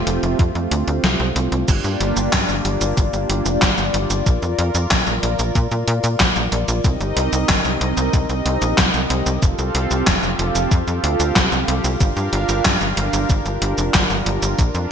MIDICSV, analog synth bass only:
0, 0, Header, 1, 2, 480
1, 0, Start_track
1, 0, Key_signature, -2, "minor"
1, 0, Tempo, 645161
1, 1252, Time_signature, 4, 2, 24, 8
1, 11100, End_track
2, 0, Start_track
2, 0, Title_t, "Analog synth bass"
2, 0, Program_c, 0, 38
2, 52, Note_on_c, 0, 29, 90
2, 144, Note_off_c, 0, 29, 0
2, 172, Note_on_c, 0, 29, 83
2, 264, Note_off_c, 0, 29, 0
2, 292, Note_on_c, 0, 41, 102
2, 384, Note_off_c, 0, 41, 0
2, 411, Note_on_c, 0, 41, 77
2, 504, Note_off_c, 0, 41, 0
2, 532, Note_on_c, 0, 38, 98
2, 624, Note_off_c, 0, 38, 0
2, 652, Note_on_c, 0, 38, 85
2, 744, Note_off_c, 0, 38, 0
2, 772, Note_on_c, 0, 36, 98
2, 864, Note_off_c, 0, 36, 0
2, 892, Note_on_c, 0, 36, 83
2, 984, Note_off_c, 0, 36, 0
2, 1011, Note_on_c, 0, 36, 96
2, 1104, Note_off_c, 0, 36, 0
2, 1131, Note_on_c, 0, 36, 84
2, 1224, Note_off_c, 0, 36, 0
2, 1252, Note_on_c, 0, 31, 106
2, 1344, Note_off_c, 0, 31, 0
2, 1372, Note_on_c, 0, 43, 75
2, 1464, Note_off_c, 0, 43, 0
2, 1492, Note_on_c, 0, 31, 100
2, 1584, Note_off_c, 0, 31, 0
2, 1612, Note_on_c, 0, 31, 80
2, 1704, Note_off_c, 0, 31, 0
2, 1732, Note_on_c, 0, 43, 99
2, 1824, Note_off_c, 0, 43, 0
2, 1852, Note_on_c, 0, 31, 79
2, 1944, Note_off_c, 0, 31, 0
2, 1972, Note_on_c, 0, 31, 89
2, 2064, Note_off_c, 0, 31, 0
2, 2092, Note_on_c, 0, 31, 85
2, 2184, Note_off_c, 0, 31, 0
2, 2212, Note_on_c, 0, 31, 106
2, 2304, Note_off_c, 0, 31, 0
2, 2332, Note_on_c, 0, 31, 80
2, 2424, Note_off_c, 0, 31, 0
2, 2453, Note_on_c, 0, 31, 94
2, 2544, Note_off_c, 0, 31, 0
2, 2572, Note_on_c, 0, 29, 83
2, 2664, Note_off_c, 0, 29, 0
2, 2692, Note_on_c, 0, 31, 100
2, 2784, Note_off_c, 0, 31, 0
2, 2812, Note_on_c, 0, 31, 78
2, 2904, Note_off_c, 0, 31, 0
2, 2932, Note_on_c, 0, 31, 97
2, 3024, Note_off_c, 0, 31, 0
2, 3052, Note_on_c, 0, 31, 85
2, 3144, Note_off_c, 0, 31, 0
2, 3172, Note_on_c, 0, 34, 103
2, 3264, Note_off_c, 0, 34, 0
2, 3293, Note_on_c, 0, 41, 75
2, 3385, Note_off_c, 0, 41, 0
2, 3413, Note_on_c, 0, 41, 98
2, 3504, Note_off_c, 0, 41, 0
2, 3532, Note_on_c, 0, 41, 85
2, 3624, Note_off_c, 0, 41, 0
2, 3652, Note_on_c, 0, 34, 109
2, 3744, Note_off_c, 0, 34, 0
2, 3772, Note_on_c, 0, 34, 81
2, 3864, Note_off_c, 0, 34, 0
2, 3893, Note_on_c, 0, 34, 92
2, 3984, Note_off_c, 0, 34, 0
2, 4012, Note_on_c, 0, 34, 87
2, 4104, Note_off_c, 0, 34, 0
2, 4132, Note_on_c, 0, 46, 99
2, 4224, Note_off_c, 0, 46, 0
2, 4252, Note_on_c, 0, 46, 78
2, 4344, Note_off_c, 0, 46, 0
2, 4372, Note_on_c, 0, 46, 105
2, 4464, Note_off_c, 0, 46, 0
2, 4492, Note_on_c, 0, 46, 86
2, 4584, Note_off_c, 0, 46, 0
2, 4612, Note_on_c, 0, 34, 100
2, 4704, Note_off_c, 0, 34, 0
2, 4732, Note_on_c, 0, 34, 81
2, 4824, Note_off_c, 0, 34, 0
2, 4853, Note_on_c, 0, 34, 97
2, 4944, Note_off_c, 0, 34, 0
2, 4973, Note_on_c, 0, 34, 90
2, 5064, Note_off_c, 0, 34, 0
2, 5092, Note_on_c, 0, 36, 101
2, 5184, Note_off_c, 0, 36, 0
2, 5212, Note_on_c, 0, 31, 80
2, 5304, Note_off_c, 0, 31, 0
2, 5332, Note_on_c, 0, 36, 95
2, 5424, Note_off_c, 0, 36, 0
2, 5451, Note_on_c, 0, 36, 84
2, 5544, Note_off_c, 0, 36, 0
2, 5572, Note_on_c, 0, 31, 103
2, 5664, Note_off_c, 0, 31, 0
2, 5691, Note_on_c, 0, 36, 77
2, 5784, Note_off_c, 0, 36, 0
2, 5811, Note_on_c, 0, 36, 94
2, 5904, Note_off_c, 0, 36, 0
2, 5932, Note_on_c, 0, 36, 86
2, 6024, Note_off_c, 0, 36, 0
2, 6052, Note_on_c, 0, 36, 102
2, 6144, Note_off_c, 0, 36, 0
2, 6171, Note_on_c, 0, 36, 74
2, 6264, Note_off_c, 0, 36, 0
2, 6292, Note_on_c, 0, 36, 97
2, 6384, Note_off_c, 0, 36, 0
2, 6411, Note_on_c, 0, 34, 89
2, 6504, Note_off_c, 0, 34, 0
2, 6532, Note_on_c, 0, 36, 104
2, 6624, Note_off_c, 0, 36, 0
2, 6652, Note_on_c, 0, 36, 79
2, 6744, Note_off_c, 0, 36, 0
2, 6772, Note_on_c, 0, 36, 94
2, 6864, Note_off_c, 0, 36, 0
2, 6892, Note_on_c, 0, 36, 86
2, 6984, Note_off_c, 0, 36, 0
2, 7012, Note_on_c, 0, 29, 101
2, 7104, Note_off_c, 0, 29, 0
2, 7132, Note_on_c, 0, 36, 82
2, 7224, Note_off_c, 0, 36, 0
2, 7252, Note_on_c, 0, 36, 100
2, 7344, Note_off_c, 0, 36, 0
2, 7372, Note_on_c, 0, 36, 83
2, 7464, Note_off_c, 0, 36, 0
2, 7492, Note_on_c, 0, 29, 105
2, 7584, Note_off_c, 0, 29, 0
2, 7612, Note_on_c, 0, 29, 80
2, 7704, Note_off_c, 0, 29, 0
2, 7732, Note_on_c, 0, 29, 91
2, 7824, Note_off_c, 0, 29, 0
2, 7852, Note_on_c, 0, 29, 80
2, 7944, Note_off_c, 0, 29, 0
2, 7972, Note_on_c, 0, 41, 109
2, 8064, Note_off_c, 0, 41, 0
2, 8091, Note_on_c, 0, 41, 79
2, 8184, Note_off_c, 0, 41, 0
2, 8211, Note_on_c, 0, 38, 101
2, 8304, Note_off_c, 0, 38, 0
2, 8331, Note_on_c, 0, 38, 82
2, 8424, Note_off_c, 0, 38, 0
2, 8452, Note_on_c, 0, 36, 97
2, 8544, Note_off_c, 0, 36, 0
2, 8571, Note_on_c, 0, 36, 78
2, 8664, Note_off_c, 0, 36, 0
2, 8691, Note_on_c, 0, 36, 97
2, 8784, Note_off_c, 0, 36, 0
2, 8811, Note_on_c, 0, 36, 87
2, 8904, Note_off_c, 0, 36, 0
2, 8932, Note_on_c, 0, 31, 106
2, 9024, Note_off_c, 0, 31, 0
2, 9052, Note_on_c, 0, 43, 76
2, 9144, Note_off_c, 0, 43, 0
2, 9172, Note_on_c, 0, 31, 100
2, 9264, Note_off_c, 0, 31, 0
2, 9291, Note_on_c, 0, 31, 84
2, 9384, Note_off_c, 0, 31, 0
2, 9412, Note_on_c, 0, 43, 106
2, 9504, Note_off_c, 0, 43, 0
2, 9531, Note_on_c, 0, 31, 81
2, 9624, Note_off_c, 0, 31, 0
2, 9651, Note_on_c, 0, 31, 89
2, 9744, Note_off_c, 0, 31, 0
2, 9771, Note_on_c, 0, 31, 88
2, 9864, Note_off_c, 0, 31, 0
2, 9892, Note_on_c, 0, 31, 106
2, 9984, Note_off_c, 0, 31, 0
2, 10012, Note_on_c, 0, 31, 77
2, 10104, Note_off_c, 0, 31, 0
2, 10132, Note_on_c, 0, 31, 98
2, 10224, Note_off_c, 0, 31, 0
2, 10252, Note_on_c, 0, 29, 87
2, 10344, Note_off_c, 0, 29, 0
2, 10372, Note_on_c, 0, 31, 101
2, 10464, Note_off_c, 0, 31, 0
2, 10492, Note_on_c, 0, 31, 82
2, 10584, Note_off_c, 0, 31, 0
2, 10612, Note_on_c, 0, 31, 91
2, 10704, Note_off_c, 0, 31, 0
2, 10732, Note_on_c, 0, 31, 83
2, 10824, Note_off_c, 0, 31, 0
2, 10852, Note_on_c, 0, 34, 103
2, 10944, Note_off_c, 0, 34, 0
2, 10971, Note_on_c, 0, 41, 79
2, 11064, Note_off_c, 0, 41, 0
2, 11100, End_track
0, 0, End_of_file